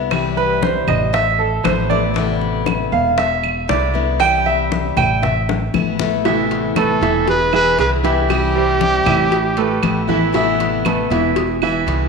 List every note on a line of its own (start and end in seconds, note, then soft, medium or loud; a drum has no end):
0.00 0.82 C2 medium
0.00 0.11 D3 medium
0.00 0.11 G#3 soft
0.00 0.11 B3 medium
0.00 0.10 E4 medium
0.10 1.12 C3 medium
0.10 1.12 E3 medium
0.10 1.13 G3 medium
0.10 1.13 C4 medium
0.10 1.13 E4 medium
0.10 high bongo medium
0.10 high conga soft
0.10 claves medium
0.37 0.62 B4 medium
0.37 high bongo soft
0.37 high conga soft
0.62 0.87 C5 medium
0.62 high bongo medium
0.62 high conga medium
0.87 1.60 A1 loud
0.87 1.13 D#5 medium
0.87 high bongo soft
0.87 high conga soft
0.87 low conga medium
0.87 claves medium
1.13 1.38 E5 medium
1.13 muted steel-string acoustic guitar stroke medium
1.13 high bongo medium
1.13 high conga soft
1.39 1.64 A4 medium
1.39 high conga soft
1.63 2.86 A1 medium
1.63 1.89 E3 medium
1.63 1.89 A3 medium
1.63 1.89 B3 medium
1.63 1.88 E4 medium
1.63 1.89 C5 medium
1.63 high bongo medium
1.63 low bongo medium
1.63 high conga medium
1.63 claves medium
1.89 2.14 E3 medium
1.89 2.15 A3 medium
1.89 2.15 B3 medium
1.89 2.15 E4 medium
1.89 2.63 D5 medium
1.89 high bongo soft
1.89 high conga medium
2.14 3.16 C3 medium
2.14 3.18 E3 medium
2.14 3.17 A3 medium
2.14 3.18 B3 medium
2.14 3.19 E4 medium
2.14 high bongo medium
2.14 high conga soft
2.42 high bongo soft
2.42 high conga soft
2.66 high bongo medium
2.66 high conga medium
2.66 claves medium
2.92 3.65 E1 loud
2.92 3.17 F5 medium
2.92 high conga soft
3.18 3.66 E5 medium
3.18 muted steel-string acoustic guitar stroke medium
3.18 high bongo medium
3.18 high conga soft
3.44 high bongo soft
3.44 high conga soft
3.44 claves medium
3.68 4.91 C2 medium
3.68 3.93 D3 soft
3.68 3.94 G#3 medium
3.68 3.93 B3 medium
3.68 3.92 E4 medium
3.68 4.17 D5 medium
3.68 high bongo medium
3.68 low bongo medium
3.68 high conga soft
3.94 4.20 D3 medium
3.94 4.20 G#3 medium
3.94 4.19 B3 medium
3.94 4.19 E4 medium
3.94 high bongo soft
3.94 high conga soft
4.19 5.21 C3 medium
4.19 5.21 E3 medium
4.19 5.22 G3 medium
4.19 5.22 C4 medium
4.19 5.22 E4 medium
4.19 4.45 G5 loud
4.19 high bongo medium
4.19 high conga soft
4.19 claves medium
4.46 4.61 E5 medium
4.46 high bongo soft
4.46 high conga soft
4.72 high bongo medium
4.72 high conga medium
4.97 5.70 A1 loud
4.97 5.22 G5 medium
4.97 high bongo soft
4.97 high conga soft
4.97 low conga medium
4.97 claves medium
5.22 5.38 E5 medium
5.22 muted steel-string acoustic guitar stroke medium
5.22 high bongo medium
5.22 high conga soft
5.22 low conga medium
5.49 high bongo medium
5.49 high conga soft
5.74 6.95 A1 medium
5.74 5.99 E3 medium
5.74 5.99 A3 medium
5.74 5.99 B3 medium
5.74 5.98 E4 medium
5.74 low bongo medium
5.74 high conga medium
5.74 claves medium
5.99 6.25 E3 soft
5.99 6.25 A3 medium
5.99 6.24 B3 medium
5.99 6.24 E4 medium
5.99 low bongo medium
5.99 high conga medium
6.25 7.26 C3 medium
6.25 6.67 E3 medium
6.25 7.27 E3 medium
6.25 7.27 A3 medium
6.25 7.27 B3 medium
6.25 6.67 E4 medium
6.25 7.28 E4 medium
6.25 6.67 E5 medium
6.25 cowbell loud
6.25 high conga soft
6.51 cowbell medium
6.51 high conga soft
6.76 6.97 A3 medium
6.76 7.24 E4 medium
6.76 6.97 A4 medium
6.76 7.25 A4 medium
6.76 6.98 B4 medium
6.76 cowbell medium
6.76 high conga loud
6.76 claves medium
7.01 7.74 E1 loud
7.01 7.44 E3 medium
7.01 7.44 E4 medium
7.01 7.44 E5 medium
7.01 cowbell medium
7.01 high conga soft
7.27 7.51 G#4 medium
7.27 7.52 B4 medium
7.27 muted steel-string acoustic guitar stroke medium
7.27 cowbell loud
7.27 high conga soft
7.53 7.95 E3 medium
7.53 7.95 E4 loud
7.53 7.77 G#4 medium
7.53 7.78 B4 loud
7.53 7.95 E5 medium
7.53 high conga soft
7.53 claves medium
7.78 9.00 C2 loud
7.78 8.03 D3 medium
7.78 8.03 G#3 medium
7.78 8.03 B3 medium
7.78 8.02 E4 medium
7.78 7.86 G#4 medium
7.78 7.91 B4 medium
7.78 cowbell medium
7.78 high conga soft
8.04 8.29 D3 soft
8.04 8.46 E3 medium
8.04 8.29 G#3 medium
8.04 8.29 B3 medium
8.04 8.28 E4 medium
8.04 8.46 E4 medium
8.04 10.05 E4 medium
8.04 10.06 G4 loud
8.04 8.46 E5 medium
8.04 cowbell medium
8.04 high conga soft
8.29 9.30 C3 medium
8.29 9.31 E3 medium
8.29 9.31 G3 medium
8.29 9.31 C4 medium
8.29 9.32 E4 medium
8.29 cowbell loud
8.29 high conga soft
8.29 claves medium
8.55 8.97 G3 medium
8.55 8.97 G4 medium
8.55 8.98 C5 medium
8.55 high conga soft
8.81 cowbell medium
8.81 high conga loud
9.06 9.79 A1 loud
9.06 9.48 E3 medium
9.06 9.48 E4 medium
9.06 9.48 E5 medium
9.06 cowbell medium
9.06 high conga soft
9.06 low conga medium
9.06 claves medium
9.31 muted steel-string acoustic guitar stroke soft
9.31 cowbell loud
9.31 high conga soft
9.57 9.99 A3 medium
9.57 10.00 A4 medium
9.57 10.00 B4 medium
9.57 cowbell medium
9.57 high conga soft
9.82 11.04 A1 medium
9.82 10.07 E3 soft
9.82 10.07 A3 medium
9.82 10.07 B3 medium
9.82 10.06 E4 medium
9.82 cowbell medium
9.82 high conga medium
9.82 claves medium
10.07 10.29 E3 medium
10.07 10.32 E3 medium
10.07 10.33 A3 medium
10.07 10.33 B3 medium
10.07 10.32 E4 medium
10.07 10.30 E4 loud
10.07 10.30 E5 medium
10.07 high conga medium
10.32 11.34 C3 medium
10.32 11.36 E3 medium
10.32 10.76 E3 medium
10.32 11.35 A3 medium
10.32 11.36 B3 medium
10.32 10.76 E4 medium
10.32 11.36 E4 medium
10.32 10.76 E5 medium
10.32 cowbell medium
10.32 high conga soft
10.60 cowbell medium
10.60 high conga soft
10.85 11.06 A3 medium
10.85 11.06 A4 medium
10.85 11.07 B4 medium
10.85 cowbell medium
10.85 high conga loud
10.85 claves medium
11.10 11.83 E1 loud
11.10 11.53 E3 medium
11.10 11.53 E4 medium
11.10 11.53 E5 medium
11.10 cowbell medium
11.10 high conga soft
11.36 muted steel-string acoustic guitar stroke medium
11.36 cowbell loud
11.36 high conga soft
11.62 12.04 E3 loud
11.62 12.04 E4 loud
11.62 12.04 E5 loud
11.62 high conga soft
11.62 claves medium
11.87 12.09 C2 medium
11.87 12.09 D3 medium
11.87 12.09 G#3 medium
11.87 12.09 B3 medium
11.87 12.09 E4 medium
11.87 cowbell medium
11.87 high conga soft